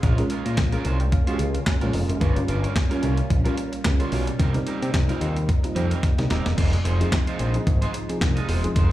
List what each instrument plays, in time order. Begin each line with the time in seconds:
Already playing: string machine G#3, fm electric piano G#4 F5
0.02 analog synth bass A#1, clean electric guitar G#3 C#4 F4 A#4, string machine A#3 C#4 F4, kick, closed hi-hat
0.18 fm electric piano G#3 C#4 F4 A#4, muted clean electric guitar stroke, closed hi-hat
0.30 clean electric guitar G#3 C#4 F4 A#4, closed hi-hat
0.45 analog synth bass A#2, clean electric guitar G#3 C#4 F4 A#4, closed hi-hat
0.57 analog synth bass A#1, muted clean electric guitar stroke, kick, snare, clap, closed hi-hat
0.72 fm electric piano G#3 C#4 F4 A#4, clean electric guitar G#3 C#4 F4 A#4, closed hi-hat
0.85 analog synth bass C2, clean electric guitar G#3 C#4 F4 C5, fm electric piano A#5, closed hi-hat
1.00 fm electric piano G5, muted clean electric guitar stroke, closed hi-hat
1.12 fm electric piano F5, muted clean electric guitar stroke, kick, closed hi-hat
1.27 fm electric piano G#3 C#4 F4 F#4, clean electric guitar G#3 C#4 F4 C5, closed hi-hat
1.34 fm electric piano G4
1.39 analog synth bass C#2, muted clean electric guitar stroke, closed hi-hat
1.54 fm electric piano F5, muted clean electric guitar stroke, closed hi-hat
1.66 fm electric piano G#5, muted clean electric guitar stroke, kick, snare, clap, closed hi-hat
1.81 analog synth bass A#1, fm electric piano G#3 C#4 F4 A#4 F5, clean electric guitar G#3 C#4 F4 A#4, closed hi-hat
1.93 analog synth bass F1, fm electric piano D#5, muted clean electric guitar stroke, open hi-hat
2.08 analog synth bass F#1, muted clean electric guitar stroke, closed hi-hat
2.21 analog synth bass G1, clean electric guitar G3 C#4 F4 A#4, string machine G3, kick, closed hi-hat
2.36 fm electric piano G3 C#4 F4 A#4, muted clean electric guitar stroke, closed hi-hat
2.48 analog synth bass G1, clean electric guitar G3 C#4 F4 A#4, closed hi-hat
2.63 clean electric guitar G3 C#4 F4 A#4, closed hi-hat
2.76 muted clean electric guitar stroke, kick, snare, clap, closed hi-hat
2.90 fm electric piano G3 C#4 F4 A#4, clean electric guitar G3 C#4 F4 A#4, closed hi-hat
3.02 analog synth bass C2, clean electric guitar G3 C#4 F4 A#4, closed hi-hat
3.17 muted clean electric guitar stroke, closed hi-hat
3.30 analog synth bass A#1, muted clean electric guitar stroke, kick, closed hi-hat
3.45 fm electric piano G3 C#4 F4 A#4, clean electric guitar G3 C#4 F4 A#4, closed hi-hat
3.57 muted clean electric guitar stroke, closed hi-hat
3.72 muted clean electric guitar stroke, closed hi-hat
3.84 analog synth bass C#2, muted clean electric guitar stroke, kick, snare, clap, closed hi-hat
4.00 fm electric piano G3 C#4 F4 A#4, clean electric guitar G3 C#4 F4 C5, closed hi-hat
4.12 analog synth bass B1, clean electric guitar G3 C#4 F4 A#4, open hi-hat
4.27 muted clean electric guitar stroke, closed hi-hat
4.39 analog synth bass C2, string machine C3 D#4, clean electric guitar G3 C4 D#4 A#4, kick, closed hi-hat
4.54 fm electric piano G3 C4 D#4 A#4, muted clean electric guitar stroke, closed hi-hat
4.66 clean electric guitar G3 C4 D#4 A#4, closed hi-hat
4.82 analog synth bass C3, clean electric guitar G3 C4 D#4 A#4, closed hi-hat
4.93 analog synth bass C2, muted clean electric guitar stroke, kick, snare, clap, closed hi-hat
5.09 fm electric piano G3 C4 D#4 F4, clean electric guitar G3 C4 D#4 A#4, closed hi-hat
5.21 analog synth bass D#2, clean electric guitar G3 C4 D#4 C5, closed hi-hat
5.36 muted clean electric guitar stroke, closed hi-hat
5.48 muted clean electric guitar stroke, kick, closed hi-hat
5.64 fm electric piano G3 C4 D#4 F4, muted clean electric guitar stroke, closed hi-hat
5.75 analog synth bass F2, clean electric guitar G3 C4 D#4 A#4, closed hi-hat
5.91 clean electric guitar G3 C4 D#4 A#4, closed hi-hat
6.03 fm electric piano G5, muted clean electric guitar stroke, kick, snare, closed hi-hat
6.18 analog synth bass C2, fm electric piano G3 C4 D#4 A#4, muted clean electric guitar stroke, snare, closed hi-hat
6.30 analog synth bass D#1, clean electric guitar G3 C4 D#4 A#4, fm electric piano A#5, snare, closed hi-hat
6.45 analog synth bass E1, muted clean electric guitar stroke, snare, closed hi-hat
6.57 analog synth bass F1, string machine C3 F3 G#3 D#4, clean electric guitar G#3 D#4 F4 C5, kick, closed hi-hat, crash
6.73 muted clean electric guitar stroke, closed hi-hat
6.85 analog synth bass F1, clean electric guitar G#3 D#4 F4 C5, closed hi-hat
7.00 fm electric piano F3 C4 D#4 G#4, clean electric guitar G#3 D#4 F4 C5, closed hi-hat
7.12 muted clean electric guitar stroke, kick, snare, clap, closed hi-hat
7.27 clean electric guitar G#3 D#4 F4 C5, closed hi-hat
7.39 analog synth bass A#1, clean electric guitar G#3 D#4 F4 C5, closed hi-hat
7.54 fm electric piano F3 C4 D#4 G#4, muted clean electric guitar stroke, closed hi-hat
7.67 analog synth bass G#1, muted clean electric guitar stroke, kick, closed hi-hat
7.82 clean electric guitar G#3 D#4 F4 C5, closed hi-hat
7.94 muted clean electric guitar stroke, closed hi-hat
8.09 fm electric piano F3 C4 D#4 G#4, muted clean electric guitar stroke, closed hi-hat
8.21 analog synth bass C2, muted clean electric guitar stroke, kick, snare, clap, closed hi-hat
8.36 clean electric guitar G#3 D#4 F4 D#5, closed hi-hat
8.48 analog synth bass E1, clean electric guitar G#3 D#4 F4 C5, open hi-hat
8.63 fm electric piano F3 C4 D#4 G#4, muted clean electric guitar stroke, closed hi-hat
8.75 analog synth bass F1, clean electric guitar G#3 D#4 F4 C5, string machine F4, kick, closed hi-hat